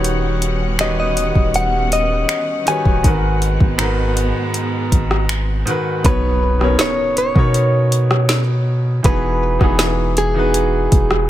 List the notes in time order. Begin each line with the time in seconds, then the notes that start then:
Already playing: D#1 D#3 G3 B3 C#4 D#4 F#4 G4 B4 C#5 F#5
0.04 closed hi-hat
0.42 closed hi-hat
0.78 D#3 D#4 F#4 G4 B4 D#5, finger snap, closed hi-hat
0.82 C#5
1.00 D#5
1.17 closed hi-hat
1.35 D#1, kick
1.54 F#5, closed hi-hat
1.92 D#5, closed hi-hat
2.29 finger snap, closed hi-hat
2.65 D#3 D#4 F#4 G4 B4 G#5, closed hi-hat
2.70 C#5
2.85 D#1, kick
3.03 G#1 G#2 D#3 G#3 B3 F#4 A#4, kick, closed hi-hat
3.07 B4
3.42 closed hi-hat
3.60 G#1, kick
3.78 G#2 D#3 F#4 A#4, finger snap, closed hi-hat
3.83 B4
4.17 closed hi-hat
4.54 closed hi-hat
4.92 G#1, kick, closed hi-hat
5.11 cross-stick
5.29 finger snap, closed hi-hat
5.65 G#2 D#3 F#4 A#4, closed hi-hat
5.70 B4
6.03 B1 B2 B3 D#4 B4, kick, closed hi-hat, impact
6.08 C#5
6.59 B2 B3 C#4 A#4, cross-stick
6.64 C#5
6.68 D#4
6.79 C#5, snare, closed hi-hat
7.17 C#5, closed hi-hat
7.34 B2 B3 D#4 A#4, kick
7.39 C#5
7.54 closed hi-hat
7.92 closed hi-hat
8.11 cross-stick
8.29 snare, closed hi-hat
9.03 E1 E3 B3 D#4 F#4 B4, kick, closed hi-hat
9.07 G#4
9.59 E1 E3 B3 D#4 F#4, kick, cross-stick
9.64 G#4
9.79 snare, closed hi-hat
10.17 G#4, closed hi-hat
10.34 E3 B3 D#4 F#4
10.39 B4
10.54 closed hi-hat
10.92 E1, kick, closed hi-hat
11.11 cross-stick